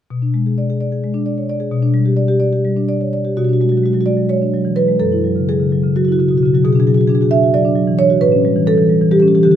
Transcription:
marimba
0.10 B2
0.22 D4
0.34 G#3
0.46 G#4
0.58 D5
0.70 G#4
0.80 D5
0.92 G#4
1.04 G#3
1.14 D4
1.26 D5
1.38 C#5
1.49 D5
1.60 G#4
1.72 B2
1.82 D4
1.94 G3
2.05 G4
2.16 D5
2.28 G4
2.40 D5
2.53 G4
2.65 G3
2.77 D4
2.89 D5
3.01 C#5
3.13 D5
3.25 G4
3.37 B2 F#4
3.44 F#4
3.49 D4
3.53 F#4
3.61 G#3 F#4
3.69 F#3 F#4
3.77 F#4
3.83 G#3 F#4
3.93 F#3 F#4
4.01 F#4
4.06 G#3 D5
4.17 F#3
4.29 G#3 C#5
4.42 D4
4.54 F#3
4.65 E3
4.76 F#3 B4
4.88 G#3
5.00 F#2 A4
5.12 E4
5.24 F#3
5.36 C#3
5.49 F#3 G#4
5.60 C#3
5.72 F#3
5.83 C#3
5.96 F#3 F#4
6.05 E4 F#4
6.12 F#4
6.19 C#3 F#4
6.28 B2 F#4
6.38 F#4
6.43 C#3 F#4
6.54 F#3 F#4
6.65 B2 G#4
6.72 D4 G#4
6.80 G#4
6.87 F#3 G#4
6.94 F#4 G#4
7.01 G#4
7.07 D4 G#4
7.15 G#4
7.21 F#4 G#4
7.31 D4 E5
7.44 F#4
7.54 F#3 D5
7.65 D4
7.75 F#3
7.87 E3
7.98 D4 C#5
8.10 F#4
8.21 A2 B4
8.32 C#4
8.45 G3
8.56 E3
8.67 G3 A4
8.78 E3
8.90 G3
9.01 E3
9.11 G3 G4
9.20 C#4 G4
9.28 G4
9.35 E3 G4
9.43 D3 G4
9.51 G4

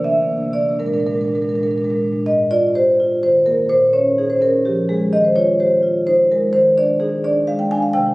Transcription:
marimba
0.04 C3 A#3 D4 E5
0.12 C3 A#3 D4
0.20 C3 A#3 D4
0.28 C3 A#3 D4
0.37 A#3 D4
0.42 C3 A#3 D4
0.51 C3 A#3 D4 D5
0.61 C3 A#3 D4
0.69 C3 A#3 D4
0.79 A#2 G#3 D4 A#4
0.86 A#2 G#3 D4 A#4
0.93 A#2 D4 A#4
0.98 G#3 D4 A#4
1.06 A#2 G#3 D4 A#4
1.14 A#2 G#3 D4 A#4
1.21 G#3 D4 A#4
1.25 A#2 A#4
1.29 D4
1.34 A#2 G#3 D4 A#4
1.42 A#2 G#3 D4 A#4
1.49 G#3 D4 A#4
1.54 A#2 A#4
1.58 G#3 D4
1.63 A#2 G#3 A#4
1.68 D4 A#4
1.73 A#2 G#3 D4
1.78 A#4
1.82 A#2 G#3 D4 A#4
1.89 A#2 D4 A#4
1.94 G#3 D4
2.02 A#2 G#3 D4
2.12 A#2 G#3 D4
2.20 D4
2.26 G#2 D#5
2.51 F4 D5
2.75 G4 C5
3.00 F4
3.23 D#3 C5
3.46 A#3 A#4
3.69 A#2 C5
3.93 C#4 C#5
4.18 D#4 G#4
4.30 C5
4.41 C#4 A#4
4.65 F3 G4
4.89 G#3 G#4
5.13 D#3 D#5
5.24 C5
5.36 F4 C#5
5.60 G4 C5
5.83 F4
6.07 D#4 C5
6.31 G#3 A#4
6.53 D#3 C5
6.77 D4 D5
7.00 D#4 G#4
7.24 D4 D5
7.47 G#3 F5
7.59 G5
7.71 D4 G#5
7.82 F5
7.93 C3 G5

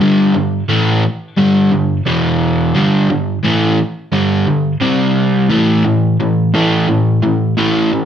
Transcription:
overdriven electric guitar
0.01 G2 D3 G3
0.34 G2 D3
0.69 A2 E3 A3
1.37 G2 D3 G3
1.72 G2 D3
2.06 E2 B2 E3
2.75 G2 D3 G3
3.09 G2 D3
3.43 A2 E3 A3
4.12 G2 D3 G3
4.46 G2 D3
4.81 C3 G3 C4
5.50 A2 E3 A3
5.84 A2 E3
6.20 A2 E3
6.54 A2 E3 A3
6.88 A2 E3
7.23 A2 E3
7.57 A2 E3 A3
7.92 A2 E3

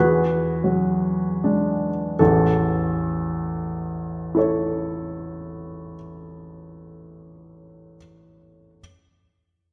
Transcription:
grand piano
Already playing: E2 F#4 G#4 B4
0.64 F#3
1.44 G#3 D4
2.19 A1 E2 A4
4.35 E4 A4 C#5

